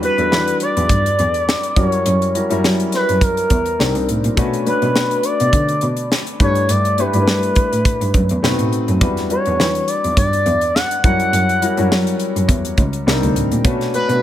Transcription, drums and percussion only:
0.03 closed hi-hat medium
0.18 closed hi-hat soft
0.32 snare medium
0.48 closed hi-hat soft
0.60 closed hi-hat medium
0.77 closed hi-hat soft
0.89 kick medium
0.89 closed hi-hat medium
1.06 closed hi-hat medium
1.19 closed hi-hat medium
1.34 closed hi-hat soft
1.49 snare loud
1.63 closed hi-hat medium
1.76 kick medium
1.76 closed hi-hat medium
1.92 closed hi-hat soft
2.06 closed hi-hat loud
2.22 closed hi-hat soft
2.35 closed hi-hat medium
2.50 closed hi-hat soft
2.64 snare loud
2.80 closed hi-hat soft
2.92 snare soft
2.92 closed hi-hat medium
3.09 closed hi-hat medium
3.21 kick medium
3.21 closed hi-hat medium
3.37 closed hi-hat medium
3.50 kick medium
3.50 closed hi-hat medium
3.66 closed hi-hat soft
3.80 snare medium
3.95 closed hi-hat soft
4.09 closed hi-hat medium
4.24 closed hi-hat soft
4.37 kick loud
4.37 closed hi-hat loud
4.53 closed hi-hat soft
4.67 closed hi-hat medium
4.82 closed hi-hat soft
4.96 snare loud
5.11 closed hi-hat medium
5.23 closed hi-hat medium
5.40 closed hi-hat medium
5.53 kick medium
5.53 closed hi-hat medium
5.68 closed hi-hat soft
5.81 closed hi-hat medium
5.97 closed hi-hat soft
6.12 snare medium
6.27 closed hi-hat soft
6.40 kick medium
6.40 closed hi-hat medium
6.55 closed hi-hat soft
6.69 closed hi-hat medium
6.85 closed hi-hat soft
6.98 closed hi-hat medium
7.13 closed hi-hat soft
7.28 snare medium
7.43 closed hi-hat medium
7.55 kick medium
7.55 closed hi-hat medium
7.73 closed hi-hat medium
7.85 kick medium
7.85 closed hi-hat medium
8.01 closed hi-hat medium
8.14 kick medium
8.14 closed hi-hat medium
8.29 closed hi-hat medium
8.44 snare loud
8.59 closed hi-hat soft
8.73 closed hi-hat medium
8.88 closed hi-hat soft
9.01 kick loud
9.01 closed hi-hat medium
9.17 snare soft
9.17 closed hi-hat soft
9.30 closed hi-hat medium
9.46 closed hi-hat soft
9.60 snare medium
9.75 closed hi-hat medium
9.88 closed hi-hat medium
10.04 closed hi-hat soft
10.17 kick medium
10.17 closed hi-hat medium
10.33 closed hi-hat soft
10.46 closed hi-hat medium
10.61 closed hi-hat soft
10.76 snare medium
10.91 closed hi-hat soft
11.04 kick medium
11.04 closed hi-hat medium
11.20 closed hi-hat soft
11.33 closed hi-hat medium
11.49 closed hi-hat soft
11.62 closed hi-hat medium
11.77 closed hi-hat soft
11.92 snare loud
12.07 closed hi-hat medium
12.20 closed hi-hat medium
12.36 closed hi-hat medium
12.49 kick medium
12.49 closed hi-hat medium
12.65 closed hi-hat medium
12.77 kick medium
12.77 closed hi-hat medium
12.93 closed hi-hat soft
13.08 snare medium
13.23 closed hi-hat medium
13.36 closed hi-hat medium
13.52 closed hi-hat soft
13.65 kick loud
13.65 closed hi-hat loud
13.81 snare soft
13.81 closed hi-hat soft
13.94 closed hi-hat medium
14.09 closed hi-hat soft

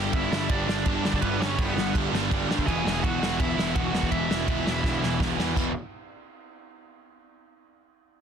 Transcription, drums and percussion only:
0.13 kick loud
0.13 ride medium
0.33 snare loud
0.49 kick loud
0.49 ride medium
0.69 snare loud
0.86 kick loud
0.86 ride medium
1.05 snare loud
1.13 kick medium
1.22 kick loud
1.22 ride medium
1.42 snare loud
1.59 kick loud
1.59 ride medium
1.78 snare loud
1.95 kick loud
1.95 ride medium
2.15 snare loud
2.31 kick loud
2.31 ride medium
2.51 snare loud
2.59 kick medium
2.68 kick loud
2.68 ride medium
2.87 snare loud
3.04 kick loud
3.04 ride medium
3.23 snare loud
3.40 kick loud
3.40 ride medium
3.59 snare loud
3.76 kick loud
3.76 ride medium
3.95 snare loud
4.03 kick medium
4.12 kick loud
4.12 ride medium
4.31 snare loud
4.48 kick loud
4.48 ride medium
4.67 snare loud
4.84 kick loud
4.84 snare medium
5.04 snare medium
5.20 kick loud
5.20 snare loud
5.40 snare loud
5.56 kick loud
5.56 splash medium

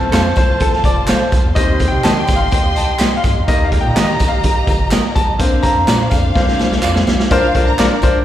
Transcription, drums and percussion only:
0.13 snare loud
0.13 clap medium
0.13 closed hi-hat medium
0.13 tambourine medium
0.36 kick medium
0.36 closed hi-hat medium
0.36 tambourine medium
0.60 kick medium
0.60 closed hi-hat medium
0.73 snare soft
0.84 kick medium
0.84 closed hi-hat medium
0.84 tambourine soft
1.07 snare loud
1.07 clap medium
1.07 closed hi-hat medium
1.07 tambourine medium
1.32 kick medium
1.32 closed hi-hat medium
1.32 tambourine medium
1.56 kick loud
1.56 closed hi-hat medium
1.56 tambourine medium
1.80 kick medium
1.80 snare soft
1.80 closed hi-hat medium
1.80 tambourine soft
2.04 snare loud
2.04 clap medium
2.04 closed hi-hat medium
2.04 tambourine medium
2.27 kick medium
2.27 closed hi-hat medium
2.27 tambourine medium
2.51 kick medium
2.51 closed hi-hat medium
2.51 tambourine soft
2.76 closed hi-hat medium
2.76 tambourine soft
2.99 snare loud
2.99 clap medium
2.99 closed hi-hat medium
2.99 tambourine medium
3.24 kick medium
3.24 closed hi-hat medium
3.24 tambourine medium
3.48 kick loud
3.48 closed hi-hat medium
3.48 tambourine medium
3.72 kick medium
3.72 snare soft
3.72 closed hi-hat medium
3.96 snare loud
3.96 clap loud
3.96 closed hi-hat medium
3.96 tambourine loud
4.20 kick medium
4.20 closed hi-hat medium
4.20 tambourine medium
4.43 kick medium
4.43 closed hi-hat medium
4.43 tambourine soft
4.67 kick medium
4.67 closed hi-hat medium
4.67 tambourine soft
4.91 snare loud
4.91 clap medium
4.91 closed hi-hat medium
4.91 tambourine medium
5.16 kick medium
5.16 closed hi-hat medium
5.16 tambourine medium
5.39 kick loud
5.39 closed hi-hat medium
5.39 tambourine medium
5.63 kick medium
5.63 snare soft
5.63 closed hi-hat medium
5.63 tambourine soft
5.88 snare loud
5.88 clap medium
5.88 closed hi-hat medium
5.88 tambourine medium
6.11 kick medium
6.11 closed hi-hat medium
6.11 tambourine medium
6.36 kick medium
6.36 snare medium
6.48 snare medium
6.59 snare medium
6.59 tambourine soft
6.72 snare medium
6.83 clap medium
6.83 tambourine medium
6.96 snare medium
7.07 snare medium
7.07 tambourine medium
7.20 snare medium
7.31 kick loud
7.31 closed hi-hat medium
7.31 tambourine medium
7.54 kick medium
7.54 snare soft
7.54 closed hi-hat medium
7.54 tambourine soft
7.79 snare loud
7.79 clap loud
7.79 closed hi-hat medium
7.79 tambourine medium
8.02 kick medium
8.02 closed hi-hat medium
8.02 tambourine medium

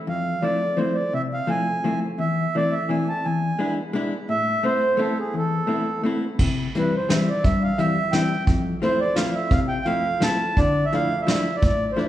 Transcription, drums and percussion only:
6.39 kick medium
6.39 crash medium
6.75 closed hi-hat soft
7.10 snare medium
7.10 closed hi-hat soft
7.44 kick medium
7.44 closed hi-hat soft
7.79 closed hi-hat soft
8.13 snare soft
8.13 closed hi-hat soft
8.47 kick medium
8.47 closed hi-hat soft
8.83 closed hi-hat soft
9.16 snare soft
9.16 closed hi-hat soft
9.51 kick medium
9.51 closed hi-hat soft
9.86 closed hi-hat soft
10.22 snare medium
10.22 closed hi-hat soft
10.57 kick medium
10.57 closed hi-hat soft
10.93 closed hi-hat soft
11.28 snare medium
11.28 closed hi-hat soft
11.62 kick medium
11.62 closed hi-hat soft
11.99 closed hi-hat soft

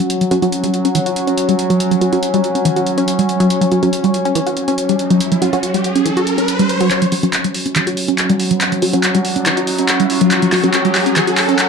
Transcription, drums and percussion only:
0.10 closed hi-hat medium
0.21 closed hi-hat medium
0.31 closed hi-hat medium
0.42 closed hi-hat soft
0.52 closed hi-hat medium
0.64 closed hi-hat soft
0.74 closed hi-hat medium
0.85 closed hi-hat soft
0.95 closed hi-hat medium
1.06 closed hi-hat soft
1.16 closed hi-hat medium
1.27 closed hi-hat soft
1.38 closed hi-hat medium
1.49 closed hi-hat soft
1.59 closed hi-hat medium
1.70 closed hi-hat soft
1.80 closed hi-hat medium
1.91 closed hi-hat soft
2.01 closed hi-hat medium
2.13 closed hi-hat soft
2.23 closed hi-hat medium
2.34 closed hi-hat soft
2.44 closed hi-hat medium
2.55 closed hi-hat soft
2.65 closed hi-hat medium
2.76 closed hi-hat soft
2.87 closed hi-hat medium
2.98 closed hi-hat soft
3.08 closed hi-hat medium
3.19 closed hi-hat soft
3.29 closed hi-hat medium
3.40 closed hi-hat soft
3.50 closed hi-hat medium
3.62 closed hi-hat soft
3.72 closed hi-hat medium
3.83 closed hi-hat soft
3.93 closed hi-hat medium
4.04 closed hi-hat soft
4.14 closed hi-hat medium
4.25 closed hi-hat soft
4.35 closed hi-hat medium
4.47 closed hi-hat soft
4.57 closed hi-hat medium
4.68 closed hi-hat soft
4.78 closed hi-hat medium
4.89 closed hi-hat medium
4.99 closed hi-hat medium
5.10 closed hi-hat medium
5.20 closed hi-hat medium
5.32 closed hi-hat medium
5.42 closed hi-hat medium
5.53 closed hi-hat medium
5.63 closed hi-hat medium
5.74 closed hi-hat soft
5.84 closed hi-hat medium
5.96 closed hi-hat soft
6.06 closed hi-hat medium
6.17 closed hi-hat medium
6.27 closed hi-hat medium
6.38 closed hi-hat medium
6.48 closed hi-hat medium
6.59 closed hi-hat medium
6.69 closed hi-hat medium
6.81 closed hi-hat medium
6.91 clap soft
6.91 closed hi-hat loud
7.02 closed hi-hat medium
7.12 open hi-hat loud
7.23 closed hi-hat medium
7.33 clap soft
7.33 closed hi-hat loud
7.44 closed hi-hat medium
7.54 open hi-hat medium
7.66 closed hi-hat medium
7.76 clap medium
7.76 closed hi-hat medium
7.87 closed hi-hat medium
7.97 open hi-hat loud
8.08 closed hi-hat medium
8.18 clap medium
8.18 closed hi-hat loud
8.29 closed hi-hat medium
8.40 open hi-hat medium
8.51 closed hi-hat medium
8.61 clap medium
8.61 closed hi-hat loud
8.72 closed hi-hat medium
8.82 open hi-hat loud
8.93 closed hi-hat medium
9.03 clap medium
9.03 closed hi-hat loud
9.15 closed hi-hat medium
9.25 open hi-hat medium
9.36 closed hi-hat medium
9.46 clap medium
9.46 closed hi-hat loud
9.57 closed hi-hat medium
9.67 open hi-hat loud
9.78 closed hi-hat medium
9.89 clap medium
9.89 closed hi-hat loud
10.00 closed hi-hat medium
10.10 open hi-hat loud
10.21 closed hi-hat medium
10.31 clap medium
10.31 closed hi-hat medium
10.42 closed hi-hat medium
10.52 clap medium
10.52 open hi-hat loud
10.64 closed hi-hat medium
10.74 clap medium
10.74 closed hi-hat loud
10.85 closed hi-hat medium
10.95 clap medium
10.95 open hi-hat loud
11.06 closed hi-hat medium
11.16 clap medium
11.16 closed hi-hat loud
11.27 closed hi-hat medium
11.37 clap medium
11.37 open hi-hat loud
11.49 closed hi-hat medium
11.59 clap medium
11.59 closed hi-hat loud

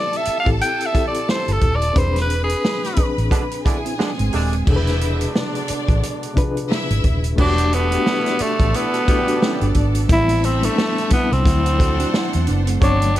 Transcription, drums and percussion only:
0.13 closed hi-hat medium
0.25 closed hi-hat medium
0.46 kick medium
0.46 closed hi-hat soft
0.61 closed hi-hat medium
0.80 closed hi-hat soft
0.95 kick medium
0.95 closed hi-hat medium
1.14 closed hi-hat medium
1.29 snare loud
1.48 closed hi-hat soft
1.61 kick medium
1.61 closed hi-hat medium
1.82 closed hi-hat medium
1.96 kick loud
1.96 closed hi-hat medium
2.16 snare soft
2.16 closed hi-hat medium
2.30 closed hi-hat medium
2.49 closed hi-hat medium
2.65 snare loud
2.84 snare soft
2.84 closed hi-hat soft
2.96 kick medium
2.96 closed hi-hat loud
3.18 closed hi-hat soft
3.31 kick loud
3.31 closed hi-hat medium
3.51 closed hi-hat soft
3.66 kick loud
3.66 closed hi-hat medium
3.86 closed hi-hat medium
4.00 snare medium
4.19 closed hi-hat soft
4.33 open hi-hat medium
4.53 closed hi-hat medium
4.67 kick loud
4.67 crash medium
4.87 snare soft
4.87 closed hi-hat medium
5.01 closed hi-hat medium
5.21 closed hi-hat medium
5.36 snare loud
5.55 closed hi-hat soft
5.68 closed hi-hat loud
5.88 kick loud
5.88 closed hi-hat soft
6.03 closed hi-hat medium
6.23 closed hi-hat medium
6.37 kick loud
6.37 closed hi-hat medium
6.57 closed hi-hat medium
6.72 snare loud
6.90 closed hi-hat soft
7.04 kick medium
7.04 closed hi-hat medium
7.24 closed hi-hat medium
7.38 kick loud
7.38 crash loud
7.58 closed hi-hat medium
7.73 closed hi-hat medium
7.92 closed hi-hat medium
8.06 snare loud
8.26 snare soft
8.26 closed hi-hat soft
8.39 closed hi-hat loud
8.60 kick medium
8.60 closed hi-hat soft
8.74 closed hi-hat medium
8.94 closed hi-hat soft
9.08 kick medium
9.08 closed hi-hat medium
9.28 closed hi-hat medium
9.42 snare loud
9.61 closed hi-hat soft
9.74 kick medium
9.74 closed hi-hat medium
9.95 closed hi-hat medium
10.09 kick loud
10.09 closed hi-hat loud
10.29 closed hi-hat medium
10.44 closed hi-hat medium
10.63 closed hi-hat medium
10.78 snare loud
10.98 closed hi-hat soft
11.10 kick loud
11.10 closed hi-hat loud
11.32 closed hi-hat soft
11.46 kick loud
11.46 closed hi-hat loud
11.66 closed hi-hat medium
11.80 kick loud
11.80 closed hi-hat medium
12.00 closed hi-hat medium
12.14 snare loud
12.33 closed hi-hat soft
12.47 closed hi-hat medium
12.67 closed hi-hat medium
12.82 kick loud
12.82 closed hi-hat medium
13.02 closed hi-hat medium
13.16 closed hi-hat medium

